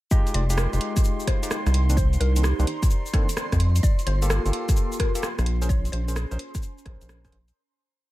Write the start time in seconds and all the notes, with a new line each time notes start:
0.11 G#3 D#4 F4 G4 D#5 C6, kick, shaker
0.27 closed hi-hat, shaker
0.34 F1 D5, closed hi-hat
0.50 G#3 D#4 F4 G4, closed hi-hat, shaker
0.57 A#4, cross-stick, shaker
0.73 F1 G#3 D#4 F4 G4, closed hi-hat, shaker
0.81 G5, closed hi-hat
0.86 F5
0.96 kick, cross-stick, closed hi-hat, shaker
1.04 shaker
1.20 shaker
1.27 C5, kick, cross-stick, closed hi-hat
1.43 G#3 D#4 F4 G4, closed hi-hat, shaker
1.51 cross-stick, shaker
1.66 C2, cross-stick, closed hi-hat, shaker
1.74 closed hi-hat
1.89 D#3 A#3 C4 D4 C5, closed hi-hat, shaker
1.97 C5, kick, shaker
2.12 A#5, closed hi-hat, shaker
2.20 C2 A#4, closed hi-hat
2.36 D#3 A#3 C4 D4 D5, closed hi-hat, shaker
2.43 G4, cross-stick, shaker
2.59 C2 D#3 A#3 C4 D4, closed hi-hat, shaker
2.67 closed hi-hat
2.83 kick, cross-stick, closed hi-hat, shaker
2.90 shaker
3.06 shaker
3.13 D#3 A#3 C4 D4 A4, kick, cross-stick, closed hi-hat
3.29 closed hi-hat, shaker
3.37 cross-stick, shaker
3.52 F2, kick, cross-stick, closed hi-hat, shaker
3.60 closed hi-hat
3.76 closed hi-hat, shaker
3.83 F4 D5, kick, shaker
3.99 closed hi-hat, shaker
4.07 G1 A#3 C5 G5, closed hi-hat
4.22 A#3 F4 G4 A4, closed hi-hat, shaker
4.30 A4, cross-stick, shaker
4.45 G1 A#3 F4 G4 A4, closed hi-hat, shaker
4.53 closed hi-hat
4.69 kick, cross-stick, closed hi-hat, shaker
4.76 shaker
4.92 shaker
5.00 A#4, kick, cross-stick, closed hi-hat
5.15 A#3 F4 G4 A4, closed hi-hat, shaker
5.23 cross-stick, shaker
5.38 A#1, cross-stick, closed hi-hat, shaker
5.46 C#4, closed hi-hat
5.62 C#4 G#4 A#4 C5, closed hi-hat, shaker
5.69 C#5, kick, shaker
5.85 closed hi-hat, shaker
5.92 A#1 C5, closed hi-hat
6.08 C#4 G#4 A#4 C5, closed hi-hat, shaker
6.16 G#4, cross-stick, shaker
6.31 A#1 C#4 G#4 A#4 C5 G#5, closed hi-hat, shaker
6.39 A#5, closed hi-hat
6.55 kick, cross-stick, closed hi-hat, shaker
6.62 shaker
6.78 shaker
6.85 A#1 C#4 G#4 A#4 C5, kick, cross-stick, closed hi-hat
7.01 A#1, closed hi-hat, shaker
7.09 cross-stick, shaker
7.24 C#4 G#4 A#4 C5, kick, cross-stick, closed hi-hat, shaker
7.32 A#1, closed hi-hat
7.48 closed hi-hat, shaker